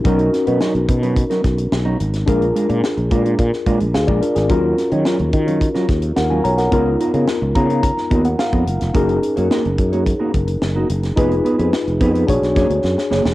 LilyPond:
<<
  \new Staff \with { instrumentName = "Tine electric piano" } { \time 4/4 \key ees \minor \tempo 4 = 108 << { r1 | r2. <aes' f''>16 <f' d''>16 <d' bes'>16 aes'16~ | aes'16 r2 r8. <bes' ges''>16 aes''16 <des'' bes''>16 <bes' ges''>16~ | <bes' ges''>16 r4 r16 bes''8 bes''8. ges''16 f''4 |
r1 | r1 | } \\ { <cis' dis' fis' ais'>1 | <d' f' aes' bes'>2. r4 | <des' f' ges' bes'>1 | <ces' ees' f' bes'>1 |
<des' ees' aes' bes'>1 | <ees' f' aes' ces''>2 <d' fis' aes' cis''>2 | } >> }
  \new Staff \with { instrumentName = "Clean electric guitar" } { \time 4/4 \key ees \minor <fis cis' dis' ais'>8 r16 <fis cis' dis' b'>16 <fis cis' dis' ais'>16 r8 <fis cis' dis' b'>16 r16 <fis cis' dis' ais'>16 r8. <fis cis' dis' ais'>16 r8 | <aes d' f' bes'>16 r16 <aes d' f' bes'>16 <aes d' f' bes'>16 r8 <aes d' f' bes'>16 <aes d' f' bes'>16 r8 <aes d' f' bes'>16 r8 <aes d' f' bes'>16 r8 | <ges des' f' bes'>8 r16 <ges des' f' des''>16 <ges des' f' bes'>16 r8 <ges des' f' des''>16 r16 <ges des' f' bes'>16 r8. <ges des' f' bes'>16 r8 | <ces' ees' f' bes'>16 r16 <ces' ees' f' bes'>16 <ces' ees' f' bes'>16 r8 <ces' ees' f' bes'>16 <ces' ees' f' bes'>16 r8 <ces' ees' f' bes'>16 r8 <ces' ees' f' bes'>16 r8 |
<bes ees' ges' bes'>8 r16 <bes ees' ges' des''>16 <bes ees' ges' bes'>16 r8 <bes ees' ges' des''>16 r16 <bes ees' ges' bes'>16 r8. <bes ees' ges' bes'>16 r8 | <ces' ees' aes' ces''>16 r16 <ces' ees' aes' ces''>16 <ces' ees' aes' ces''>16 r8 <ces' ees' aes' ces''>16 <ces' ees' aes' ces''>16 r8 <bes d' aes' cis''>16 r8. <bes d' aes' cis''>16 r16 | }
  \new Staff \with { instrumentName = "Fretless electric bass" } { \clef bass \time 4/4 \key ees \minor b,,8 r16 b,16 r16 b,,16 b,8. r16 b,,8 b,,8 aes,,8 | bes,,8 r16 bes,16 r16 bes,,16 bes,8 bes,16 r16 bes,16 bes,,16 d,16 bes,,16 r16 aes,,16 | ees,8 r16 ees16 r16 ees,16 ees8. r16 ees,8 ees,8 ces,8 | des,8 r16 des16 r16 des,16 des8. r16 ees,8 r16 f,16 ges,,16 f,,16 |
ges,,8 r16 ges,16 r16 ges,,16 ges,8. r16 ges,,8 ges,,8 ges,,8 | f,,8 r16 f,16 r16 f,,16 f,8 bes,,16 ces,16 fis,16 d,16 fis,16 r16 fis,,16 fes,,16 | }
  \new DrumStaff \with { instrumentName = "Drums" } \drummode { \time 4/4 <hh bd>16 hh16 <hh sn>16 hh16 sn16 hh16 <hh bd>16 hh16 <hh bd>16 <hh sn>16 <hh bd sn>16 hh16 sn8 hh16 <hh sn>16 | <hh bd>16 hh16 hh16 hh16 sn16 hh16 <hh bd>16 hh16 <hh bd>16 sn16 <hh bd>16 hh16 sn16 bd16 hh16 <hh sn>16 | <hh bd>8 <hh sn>16 hh16 sn16 hh16 <hh bd>16 hh16 <hh bd>16 <hh sn>16 <hh bd sn>16 hh16 sn8 hh16 <hh sn>16 | <hh bd>8 hh16 hh16 sn8 <hh bd>16 hh16 <hh bd>16 sn16 <hh bd>16 hh16 sn16 <hh bd>16 hh16 <hh sn>16 |
<hh bd>16 hh16 hh16 hh16 sn16 hh16 <hh bd>16 hh16 <hh bd>8 <hh bd>16 hh16 sn8 hh16 <hh sn>16 | <hh bd>16 hh16 hh16 hh16 sn16 hh16 <hh bd>16 hh16 <hh bd>16 <hh sn>16 <hh bd sn>16 hh16 sn16 sn16 sn16 sn16 | }
>>